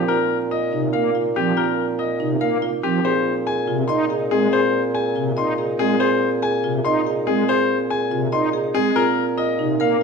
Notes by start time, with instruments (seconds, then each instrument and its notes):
Already playing: bassoon A#2, marimba C4, grand piano G4
0.08 marimba F4, grand piano A#4
0.51 marimba F4, grand piano D#5
0.73 pipe organ C3, marimba D#4
0.93 pipe organ A#3, marimba A#4, grand piano F5
1.15 marimba F4
1.36 pipe organ F3, marimba C4, grand piano G4
1.57 marimba F4, grand piano A#4
1.99 marimba F4, grand piano D#5
2.20 pipe organ C3, marimba D#4
2.41 pipe organ A#3, marimba A#4, grand piano F5
2.62 marimba F4
2.83 pipe organ F3, marimba C4, grand piano G4
3.04 bassoon A#2, marimba G#4, grand piano C5
3.47 marimba G#4, grand piano G#5
3.68 pipe organ C3, marimba F4
3.88 pipe organ D#4, marimba D#5, grand piano C6
4.10 marimba G#4
4.31 pipe organ G#3, marimba C4, grand piano G#4
4.52 marimba G#4, grand piano C5
4.95 marimba G#4, grand piano G#5
5.16 pipe organ C3, marimba F4
5.37 pipe organ D#4, marimba D#5, grand piano C6
5.58 marimba G#4
5.79 pipe organ G#3, marimba C4, grand piano G#4
6.00 marimba G#4, grand piano C5
6.42 marimba G#4, grand piano G#5
6.64 pipe organ C3, marimba F4
6.85 pipe organ D#4, marimba D#5, grand piano C6
7.06 marimba G#4
7.27 pipe organ G#3, marimba C4, grand piano G#4
7.49 marimba G#4, grand piano C5
7.90 marimba G#4, grand piano G#5
8.11 pipe organ C3, marimba F4
8.32 pipe organ D#4, marimba D#5, grand piano C6
8.53 marimba G#4
8.74 pipe organ G#3, marimba C4, grand piano G#4
8.96 bassoon A#2, marimba F4, grand piano A#4
9.38 marimba F4, grand piano D#5
9.59 pipe organ C3, marimba D#4
9.80 pipe organ A#3, marimba A#4, grand piano F5